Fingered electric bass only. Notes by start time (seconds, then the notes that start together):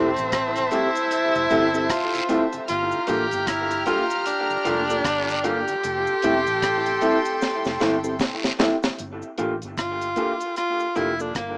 Already playing: E1
0.18 A1
1.36 F1
1.52 G1
2.70 G1
3.09 A1
3.33 G1
4.67 F1
5.05 G1
5.85 F1
6.24 E1
6.48 A1
7.66 F1
7.82 G1
9.00 G1
9.39 A1
9.63 G1
10.97 F1
11.36 G1